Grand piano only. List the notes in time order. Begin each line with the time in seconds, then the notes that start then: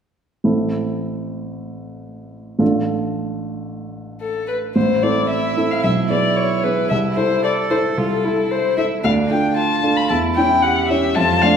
0.44 A1 C4 E4 A4
2.59 A1 D4 F4 A4
4.76 A1
5.03 C4 E4 A4
5.57 C4 E4 A4
5.83 B1
6.10 B3 G#4
6.64 B3 G#4
6.91 C2
7.17 E4 A4
7.71 E4 A4
7.97 C2
8.24 E4 A4
8.78 E4 A4
9.04 D2
9.30 D4 F4 A4
9.83 D4 F4 A4
10.10 E2
10.37 C#4 E4 C#5
10.90 C#4 E4 C#5
11.16 F2
11.42 A3 D4 D5